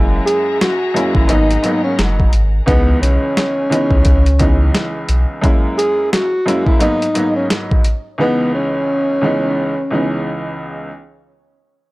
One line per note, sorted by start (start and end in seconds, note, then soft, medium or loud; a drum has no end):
0.00 0.19 F#1 loud
0.00 0.72 F#2 loud
0.00 0.72 G#3 medium
0.00 0.73 A#3 medium
0.00 0.73 C#4 medium
0.00 0.73 E4 loud
0.00 2.65 G#4 medium
0.00 1.29 E5 medium
0.00 1.28 F#5 medium
0.00 2.65 A#5 medium
0.25 0.57 G#4 medium
0.25 closed hi-hat medium
0.61 1.12 F#4 medium
0.61 snare loud
0.61 closed hi-hat medium
0.94 1.29 F#2 loud
0.94 1.30 G#3 medium
0.94 1.27 A#3 medium
0.94 1.30 C#4 loud
0.94 1.31 E4 loud
0.94 closed hi-hat medium
1.15 1.27 G#1 medium
1.15 1.28 E4 medium
1.15 kick loud
1.28 1.57 G#1 loud
1.28 1.51 G#2 loud
1.28 1.51 F#3 medium
1.28 1.52 A#3 medium
1.28 1.52 B3 medium
1.28 1.81 D#4 medium
1.28 1.52 D#4 loud
1.28 2.66 A#4 medium
1.28 2.66 F#5 medium
1.28 closed hi-hat loud
1.51 closed hi-hat medium
1.63 2.28 G#2 medium
1.63 2.28 F#3 medium
1.63 2.29 A#3 medium
1.63 2.29 B3 medium
1.63 2.29 D#4 loud
1.63 closed hi-hat medium
1.84 1.97 C#4 medium
1.99 2.26 F#1 medium
1.99 snare loud
1.99 closed hi-hat medium
2.20 kick loud
2.33 2.61 G#1 medium
2.33 closed hi-hat medium
2.66 3.63 C#2 loud
2.66 2.95 C#2 loud
2.66 3.64 E3 medium
2.66 3.64 G#3 medium
2.66 2.99 B3 loud
2.66 3.65 B3 medium
2.66 3.65 D#4 loud
2.66 kick loud
2.66 closed hi-hat medium
3.02 3.18 B1 loud
3.02 4.90 C#4 medium
3.02 closed hi-hat medium
3.37 snare loud
3.37 closed hi-hat medium
3.70 4.20 C#2 loud
3.70 4.20 E3 medium
3.70 4.21 G#3 medium
3.70 4.21 B3 medium
3.70 4.22 D#4 loud
3.70 closed hi-hat medium
3.91 4.70 C#2 medium
3.91 kick loud
4.05 kick loud
4.05 closed hi-hat loud
4.26 closed hi-hat medium
4.39 5.36 C#2 medium
4.39 5.36 E3 medium
4.39 5.37 G#3 medium
4.39 5.37 B3 medium
4.39 5.37 D#4 loud
4.39 kick loud
4.39 closed hi-hat medium
4.75 snare loud
4.75 closed hi-hat medium
5.09 5.25 B1 medium
5.09 closed hi-hat medium
5.41 6.23 F#2 loud
5.41 6.24 G#3 medium
5.41 6.24 A#3 medium
5.41 6.25 C#4 medium
5.41 6.25 E4 loud
5.41 kick loud
5.41 closed hi-hat medium
5.78 6.09 G#4 loud
5.78 closed hi-hat medium
6.12 6.64 F#4 medium
6.12 snare loud
6.12 closed hi-hat medium
6.46 6.81 F#2 loud
6.46 6.81 G#3 medium
6.46 6.79 A#3 medium
6.46 6.82 C#4 loud
6.46 6.82 E4 loud
6.46 closed hi-hat medium
6.66 6.80 E4 medium
6.66 kick loud
6.79 7.03 G#2 loud
6.79 7.03 F#3 medium
6.79 7.03 A#3 medium
6.79 7.04 B3 medium
6.79 7.33 D#4 loud
6.79 7.04 D#4 loud
6.79 closed hi-hat loud
7.02 closed hi-hat medium
7.14 7.79 G#2 medium
7.14 7.80 F#3 medium
7.14 7.80 A#3 medium
7.14 7.81 B3 medium
7.14 7.81 D#4 loud
7.14 closed hi-hat medium
7.36 7.49 C#4 medium
7.50 snare loud
7.50 closed hi-hat medium
7.71 kick loud
7.84 closed hi-hat medium
8.18 9.15 C#2 loud
8.18 9.16 E3 medium
8.18 9.16 G#3 medium
8.18 9.16 B3 medium
8.18 8.51 B3 loud
8.18 9.17 D#4 loud
8.55 10.43 C#4 medium
9.21 9.72 C#2 medium
9.21 9.72 E3 loud
9.21 9.72 G#3 medium
9.21 9.73 B3 medium
9.21 9.73 D#4 loud
9.91 10.88 C#2 medium
9.91 10.88 E3 medium
9.91 10.89 G#3 medium
9.91 10.89 B3 medium
9.91 10.89 D#4 loud